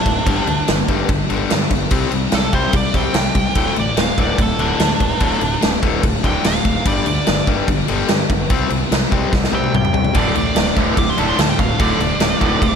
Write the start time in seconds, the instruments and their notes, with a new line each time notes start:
Already playing: lead electric guitar D4
0.06 fingered electric bass D1, overdriven electric guitar D2 A2, kick, crash
0.26 fingered electric bass G1, overdriven electric guitar G2 D3 G3, kick, crash
0.47 fingered electric bass D2, overdriven electric guitar G2 D3, crash
0.68 fingered electric bass G1, overdriven electric guitar G2 D3, snare, crash
0.88 fingered electric bass G1, overdriven electric guitar G2 D3 G3, kick, crash
1.09 fingered electric bass G1, overdriven electric guitar G2 D3, kick, crash
1.29 fingered electric bass G1, overdriven electric guitar G2 D3 G3, crash
1.50 overdriven electric guitar G2 D3, fingered electric bass G2, snare, crash
1.70 fingered electric bass G1, overdriven electric guitar G2 D3, kick, crash
1.91 fingered electric bass C2, overdriven electric guitar C3 G3 C4, kick, crash
2.11 fingered electric bass C2, overdriven electric guitar C3 G3, crash
2.32 fingered electric bass C2, overdriven electric guitar C3 G3, lead electric guitar A4, snare, crash
2.53 fingered electric bass C2, overdriven electric guitar C3 G3 C4, lead electric guitar C5, kick, crash
2.73 fingered electric bass C2, overdriven electric guitar C3 G3, lead electric guitar D5, kick, crash
2.94 fingered electric bass C2, overdriven electric guitar C3 G3 C4, lead electric guitar G5, kick, crash
3.13 fingered electric bass C2, overdriven electric guitar C3 G3, snare, crash
3.35 fingered electric bass C2, overdriven electric guitar C3 G3, kick, crash
3.55 fingered electric bass D1, overdriven electric guitar D2 A2 D3, kick, crash
3.76 fingered electric bass A1, overdriven electric guitar D2 A2, lead electric guitar D5, crash
3.97 fingered electric bass D1, overdriven electric guitar D2 A2, snare, crash
4.01 lead electric guitar F5
4.18 fingered electric bass D1, overdriven electric guitar D2 A2 D3, lead electric guitar D5, kick, crash
4.38 fingered electric bass D1, overdriven electric guitar D2 A2, lead electric guitar A4, kick, crash
4.58 fingered electric bass D1, overdriven electric guitar D2 A2 D3, lead electric guitar D4, crash
4.79 fingered electric bass D2, overdriven electric guitar D2 A2, snare, crash
5.00 fingered electric bass D1, overdriven electric guitar D2 A2, kick, crash
5.20 fingered electric bass D1, overdriven electric guitar D2 A2 D3, kick, crash
5.41 fingered electric bass D1, overdriven electric guitar D2 A2, crash
5.61 fingered electric bass D1, overdriven electric guitar D2 A2, snare, crash
5.82 fingered electric bass D1, overdriven electric guitar D2 A2 D3, kick, crash
6.03 fingered electric bass D1, overdriven electric guitar D2 A2, kick, crash
6.23 fingered electric bass D1, overdriven electric guitar D2 A2 D3, lead electric guitar G5, kick, crash
6.44 fingered electric bass D1, overdriven electric guitar D2 A2, lead electric guitar F5, snare, crash
6.65 fingered electric bass D1, overdriven electric guitar D2 A2, kick, crash
6.85 fingered electric bass G1, overdriven electric guitar G2 D3 G3, lead electric guitar D5, kick, crash
7.06 fingered electric bass D2, overdriven electric guitar G2 D3, lead electric guitar D5, crash
7.27 fingered electric bass G1, overdriven electric guitar G2 D3, snare, crash
7.47 fingered electric bass G1, overdriven electric guitar G2 D3 G3, kick, crash
7.68 fingered electric bass G1, overdriven electric guitar G2 D3, kick, crash
7.88 fingered electric bass G1, overdriven electric guitar G2 D3 G3, crash
8.09 overdriven electric guitar G2 D3, fingered electric bass G2, snare, crash
8.30 fingered electric bass G1, overdriven electric guitar G2 D3, kick, crash
8.50 fingered electric bass C2, overdriven electric guitar C3 G3 C4, kick, crash
8.70 fingered electric bass C2, overdriven electric guitar C3 G3, crash
8.91 fingered electric bass C2, overdriven electric guitar C3 G3, snare, crash
9.11 fingered electric bass C2, overdriven electric guitar C3 G3 C4, kick, crash
9.32 fingered electric bass C2, overdriven electric guitar C3 G3, kick, snare
9.44 snare
9.52 fingered electric bass C2, overdriven electric guitar C3 G3 C4, lead electric guitar G5, high tom
9.64 high tom
9.73 fingered electric bass C2, overdriven electric guitar C3 G3, lead electric guitar G5, mid tom
9.85 mid tom
9.93 fingered electric bass C2, overdriven electric guitar C3 G3, floor tom
10.05 floor tom
10.14 fingered electric bass D1, overdriven electric guitar D2 A2 D3, distorted electric guitar A3 F4, lead electric guitar D5, kick, crash
10.35 fingered electric bass A1, overdriven electric guitar D2 A2, lead electric guitar D5, crash
10.55 fingered electric bass D1, overdriven electric guitar D2 A2, snare, crash
10.76 fingered electric bass D1, overdriven electric guitar D2 A2 D3, kick, crash
10.97 fingered electric bass D1, overdriven electric guitar D2 A2, distorted electric guitar D3 A3 F4, lead electric guitar D6, kick, crash
11.10 lead electric guitar C6
11.17 fingered electric bass D1, overdriven electric guitar D2 A2 D3, lead electric guitar A5, crash
11.29 lead electric guitar C6
11.38 overdriven electric guitar D2 A2, fingered electric bass D2, lead electric guitar A5, snare, crash
11.50 lead electric guitar G5
11.58 fingered electric bass D1, overdriven electric guitar D2 A2, lead electric guitar F5, kick, crash
11.79 fingered electric bass D1, overdriven electric guitar D2 A2 D3, distorted electric guitar A3 F4, lead electric guitar D5, kick, crash
12.00 fingered electric bass D1, overdriven electric guitar D2 A2, crash
12.19 fingered electric bass D1, overdriven electric guitar D2 A2, snare, crash
12.40 fingered electric bass D1, overdriven electric guitar D2 A2 D3, kick, crash
12.62 fingered electric bass D1, overdriven electric guitar D2 A2, distorted electric guitar D3 A3 F4, kick, crash